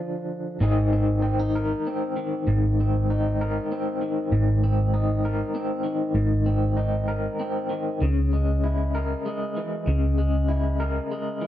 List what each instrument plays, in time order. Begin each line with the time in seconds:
Already playing: clean electric guitar D3 F3 D4 G#4
0.60 fingered electric bass G#1, clean electric guitar G#2 D#3 C4 D#4 G#4
0.93 clean electric guitar C4
1.22 clean electric guitar C4
1.39 clean electric guitar D#4
1.55 clean electric guitar A#4
1.87 clean electric guitar C4
2.16 clean electric guitar D#3
2.47 fingered electric bass G#1, clean electric guitar G#2
2.80 clean electric guitar C4
3.10 clean electric guitar D#4
3.41 clean electric guitar A#4
3.72 clean electric guitar C4
4.01 clean electric guitar D#3
4.31 fingered electric bass G#1, clean electric guitar G#2
4.64 clean electric guitar C4
4.94 clean electric guitar D#4
5.25 clean electric guitar A#4
5.55 clean electric guitar C4
5.84 clean electric guitar D#3
6.14 fingered electric bass G#1, clean electric guitar G#2
6.46 clean electric guitar C4
6.77 clean electric guitar D#4
7.08 clean electric guitar A#4
7.40 clean electric guitar C4
7.70 clean electric guitar D#3
8.01 fingered electric bass C#2, clean electric guitar C#3
8.33 clean electric guitar G#3
8.64 clean electric guitar E4
8.95 clean electric guitar A#4
9.26 clean electric guitar G#3
9.57 clean electric guitar E3
9.87 fingered electric bass C#2, clean electric guitar C#3
10.18 clean electric guitar G#3
10.49 clean electric guitar E4
10.80 clean electric guitar A#4
11.11 clean electric guitar G#3
11.41 clean electric guitar E3